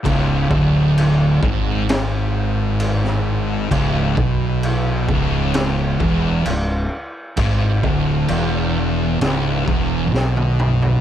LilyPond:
<<
  \new Staff \with { instrumentName = "Distorted electric guitar" } { \clef bass \time 4/4 \key cis \minor \tempo 4 = 65 cis,8 d,4 gis,2~ gis,8 | cis,8 b,4 cis,4 e,8 cis,8 r8 | gis,8 d,8 e,4 cis,8 e,8 b,4 | }
  \new Staff \with { instrumentName = "Distorted electric guitar" } { \clef bass \time 4/4 \key cis \minor cis,8 d,4 gis,2~ gis,8 | cis,8 b,4 cis,4 e,8 cis,8 r8 | gis,8 d,8 e,4 cis,8 e,8 b,4 | }
  \new Staff \with { instrumentName = "Fingered electric bass" } { \clef bass \time 4/4 \key cis \minor cis,,8 d,,4 gis,,2~ gis,,8 | cis,,8 b,,4 cis,,4 e,,8 cis,,8 r8 | gis,,8 d,,8 e,,4 cis,,8 e,,8 b,,4 | }
  \new DrumStaff \with { instrumentName = "Drums" } \drummode { \time 4/4 <cymc bd>8 bd8 cymc8 bd8 <cymc sn>4 cymc16 sn8. | <cymc bd>8 bd8 cymc8 bd8 <cymc sn>8 bd8 cymc4 | <cymc bd>8 bd8 cymc4 <cymc sn>8 bd8 sn16 tommh16 toml16 tomfh16 | }
>>